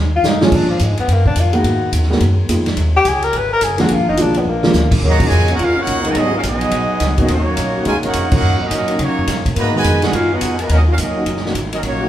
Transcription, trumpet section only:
5.07 F#4 C#5 D#5 A#5
5.25 F#4 C#5 D#5 G#5
5.53 D#4 A#4 C#5 F#5
5.62 C#4 F#4 A#4 F5
5.80 D#4 A#4 C#5 F#5
6.08 F#4 C#5 D#5 A#5
6.17 B3 F#4 G#4 D#5
6.36 C#4 F#4 A#4 F5
6.45 B3 F#4 G#4 D#5
7.21 B3 F#4 G#4 D#5
7.30 A#3 D#4 F#4 C#5
7.86 F4 A#4 C#5 G#5
8.04 D#4 A#4 C#5 F#5
8.34 D#4 A#4 C#5 F#5
8.62 C#4 F#4 A#4 D#5
8.74 C#4 F#4 A#4 D#5
9.02 A#3 D#4 F#4 C#5
9.58 F#4 B4 D#5 A#5
9.75 F#4 B4 D#5 G#5
10.02 D#4 G#4 B4 F#5
10.13 C#4 F#4 A#4 F5
10.32 D#4 G#4 B4 F#5
10.57 A5
10.62 F#4 B4 D#5 A#5
10.72 C#4 F#4 A#4 D#5
10.90 C#4 F#4 A#4 F5
11.01 C#4 F#4 A#4 D#5
11.74 C#4 F#4 A#4 D#5
11.85 A#3 D#4 F#4 C#5

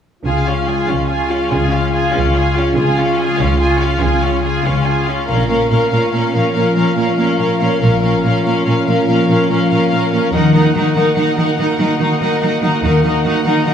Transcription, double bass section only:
0.26 C#2
0.89 C#2
1.52 C#2
2.14 C#2
2.76 C#2
3.39 C#2
4.02 C#2
4.65 C#2
5.29 A#1
7.82 A#1
10.33 D#2
12.83 D#2

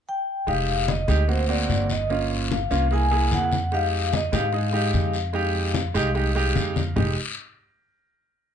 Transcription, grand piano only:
0.47 G#3 D#4 G4
1.08 G#3 D#4 G4
1.28 A#3 C4 F#4
1.48 A#3 C4 F#4
2.10 A#3 C#4 F4
2.71 A#3 C#4 F4
2.91 A#3 E4 G#4
3.11 A#3 E4 G#4
3.72 G#3 D#4 G4
4.32 G#3 D#4 G4
4.53 G#3 D#4 G#4
4.73 G#3 D#4 G4
5.33 G#3 D#4 G4
5.94 G#3 D#4 G4
6.15 G#3 D#4 G4
6.35 G#3 D#4 G4 D#5
6.56 F5
6.96 G#3 D#4 G4

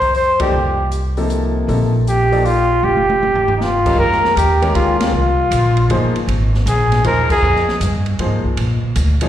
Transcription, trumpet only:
Already playing: C5
0.16 C5
0.41 G4
2.09 G4
2.46 F4
2.84 G4
3.57 D#4
3.63 F4
3.99 A#4
4.37 G4
4.75 F4
5.00 F4
6.69 G#4
7.06 A#4
7.32 G#4

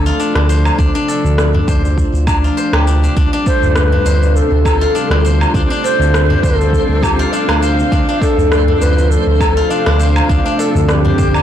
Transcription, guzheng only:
Already playing: D4 A4 C5
0.06 F4
0.20 D4
0.36 D4
0.49 C5
0.79 D4
0.95 D4
1.08 A4
1.54 D4
1.68 C5
2.27 D4
2.44 F4
2.57 C5
2.74 G4
2.87 D4
3.04 D4
3.17 D4
3.33 D4
3.46 A4
3.92 D4
4.06 C5
4.65 A4
4.81 F4
4.95 D4
5.11 D4
5.25 C5
5.54 D4
5.70 D4
5.84 A4
6.30 D4
6.43 C5
7.03 A4
7.19 F4
7.33 D4
7.49 D4
7.62 C5
7.92 D4
8.09 D4
8.22 A4
8.68 D4
8.81 C5
9.41 A4
9.57 F4
9.70 D4
9.86 D4
9.99 C5
10.29 D4
10.46 D4
10.59 A4
11.05 D4
11.18 C5

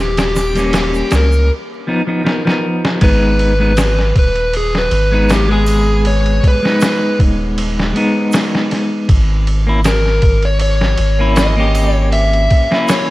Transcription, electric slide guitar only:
0.01 G4
0.20 G4
0.76 G4
1.15 A#4
3.04 B4
4.19 B4
4.57 G#4
4.78 B4
5.33 G4
5.52 G#4
6.07 C#5
6.47 B4
9.87 A#4
10.45 C#5
10.62 C#5
11.36 D#5
11.94 C#5
12.13 E5
12.90 C#5

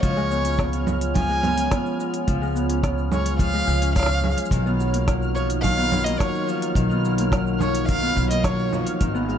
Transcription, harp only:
Already playing: A#3 C#4
0.02 F3
0.17 G#3
0.30 B3
0.44 C#4
0.58 B3
0.86 G#3
1.15 F3
1.29 G#3
1.43 B3
1.57 C#4
1.71 B3
1.99 G#3
2.27 F3
2.41 G#3
2.55 B3
2.69 C#4
2.83 B3
3.11 G#3
3.39 F3
3.54 G#3
3.67 G#3
3.82 C#4
3.96 F3
4.24 G#3
4.51 D#3
4.66 B3
4.80 F#3
4.94 A#3
5.08 F#3
5.35 F3
5.64 D#3
5.78 B3
5.91 F#3
6.05 A#3
6.20 F#3
6.48 F3
6.76 D#3
6.90 B3
7.05 F#3
7.19 A#3
7.33 F#3
7.61 F3
7.88 D#3
8.03 B3
8.16 F#3
8.30 A#3
8.44 F#3
8.72 F3
9.00 D#3
9.14 B3
9.28 G#3

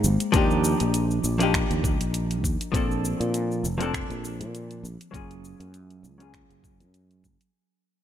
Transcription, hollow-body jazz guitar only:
Already playing: G#3 A#3 C4 D#4 G4
0.32 F3 A#3 D4 D#4
0.37 G4
1.38 F3 A#3 D4 D#4
1.43 G4
2.72 F3 A#3 C4 D4
2.76 A4
3.78 F3 A#3 C4 D4
3.82 A4
5.11 F#3 A#3 C#4 F4
5.16 G#4
6.18 F#3 A#3 C#4 F4
6.22 G#4

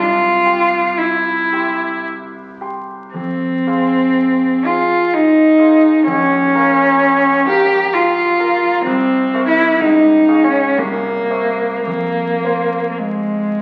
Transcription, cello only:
Already playing: F4
0.98 E4
3.14 C4
4.65 F4
5.14 D#4
6.08 C#4
7.48 G4
7.93 F4
8.84 C4
9.47 E4
9.80 D#4
10.44 C#4
10.78 A#3
11.84 A#3
12.91 A#3
12.98 G#3

